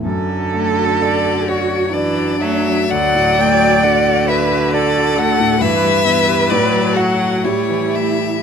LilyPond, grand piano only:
\new Staff \with { instrumentName = "Grand piano" } { \time 3/4 \key d \major \tempo 4 = 65 fis,16 fis16 a16 fis'16 d''16 fis'16 d''16 fis'16 d''16 fis'16 a16 fis16 | d,16 a,16 a16 fis'16 d''16 fis'16 d''16 fis'16 d''16 fis'16 a16 a,16 | g,16 g16 b16 g'16 a,16 fis16 a16 fis'16 a,16 e16 a16 g'16 | }